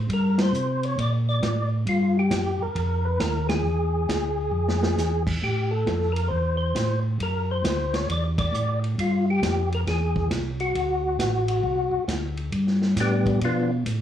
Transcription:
0.09 G2, kick, ride
0.13 A#4
0.38 C5, snare, ride
0.52 C3, hi-hat pedal
0.83 C#5, ride
0.97 A#2 D5, kick, ride
1.29 D5
1.42 A2, kick, snare, hi-hat pedal, ride
1.87 G2 F4, kick, ride
2.19 G4
2.31 F#2, kick, snare, hi-hat pedal, ride
2.60 F#2 A#4
2.75 F2, kick, ride
3.05 B4
3.20 D#2 A#4, kick, snare, hi-hat pedal, ride
3.49 G#4, snare, ride
3.63 E2
4.09 D2, kick, snare, hi-hat pedal, ride
4.51 F2
4.68 snare
4.83 snare
4.96 E2, snare, hi-hat pedal
5.27 kick, crash
5.42 A2 G4, kick
5.71 A4
5.86 F2, kick, snare, hi-hat pedal, ride
6.12 A#4, ride
6.28 E2 C5, kick
6.57 C5
6.75 A2, kick, snare, hi-hat pedal, ride
7.19 F#2 A#4, kick, ride
7.51 C5
7.64 D2, kick, snare, hi-hat pedal, ride
7.94 C#5, snare, ride
8.09 E2 D5, kick, ride
8.38 D5, kick, ride
8.52 A2, hi-hat pedal
8.84 ride
8.98 G2 F4, kick, ride
9.30 G4
9.42 F2, kick, snare, hi-hat pedal, ride
9.72 A#4, ride
9.87 E2 G#4, kick, snare, ride
10.16 kick
10.31 C2, kick, snare, hi-hat pedal, ride
10.60 F#4, ride
10.75 D2, kick, ride
11.19 A1, kick, snare, hi-hat pedal, ride
11.48 ride
11.64 C2, kick
11.92 C2
12.08 D2, kick, snare, hi-hat pedal, ride
12.37 ride
12.52 G2, kick, ride
12.67 snare
12.82 snare
12.96 A2 B3 D4 G4, kick, snare, hi-hat pedal, ride
13.01 G3
13.26 kick, ride
13.41 B2 F3 B3 D4 F4, kick, ride
13.85 A2, kick, hi-hat pedal, ride

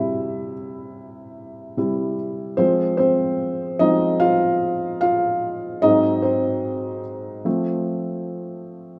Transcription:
Already playing: C3 G3 E4 E5
1.77 C3 G3 E4
2.57 F3 G#3 C4 C5
2.97 C4 C5
3.79 F3 G#3 C4 D#4 D#5
4.20 F4 F5
5.01 F4 F5
5.82 G#2 F#3 C4 D#4 D#5
6.22 C4 C5
7.45 F3 A3 C4

